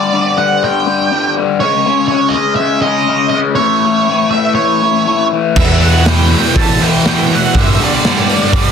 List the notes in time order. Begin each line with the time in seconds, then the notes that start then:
Already playing: G2 D3 G3 D5
0.13 G2 D3 G3
0.38 G2 D3 G3 F#5
0.62 G2 D3 G3 G5
0.87 G2 D3 G3
1.12 G2 D3 G3
1.37 G2 D3 G3
1.60 C#3 G#3 C#4 C#5
1.86 C#3 G#3 C#4
2.08 C#3 G#3 C#4 C#5
2.29 D#5
2.34 C#3 G#3 C#4
2.56 C#3 E5
2.60 G#3 C#4
2.82 C#3 G#3 C#4 D#5
3.09 C#3 G#3 C#4
3.30 C#3 D#5
3.34 G#3 C#4
3.55 A2 E3 A3 C#5
3.84 A2 E3 A3
4.09 A2 E3 A3
4.31 A2 A3 E5
4.35 E3
4.55 A2 E3 A3 C#5
4.82 A2 E3 A3
5.07 A2 E3 A3
5.32 A2 E3 A3
5.56 E2 B2 E3 E5, kick, crash
5.80 E2 B2 E3 F#5, open hi-hat
6.06 E2 B2 E3 G5, snare, open hi-hat
6.31 E2 B2 E3, open hi-hat
6.55 E2 B2 E3 A5, kick, open hi-hat
6.81 E2 B2 E3 G5, open hi-hat
7.05 E2 B2 E3 G5, snare, open hi-hat
7.30 E2 B2 E3, open hi-hat
7.35 F#5
7.54 G2 D3 G3, kick, open hi-hat
7.60 E5
7.80 G2 D3 G3, open hi-hat
7.84 D5
8.04 G2 D3 G3, snare, open hi-hat
8.29 G2 D3 G3, open hi-hat
8.53 G2 D3 G3, kick, open hi-hat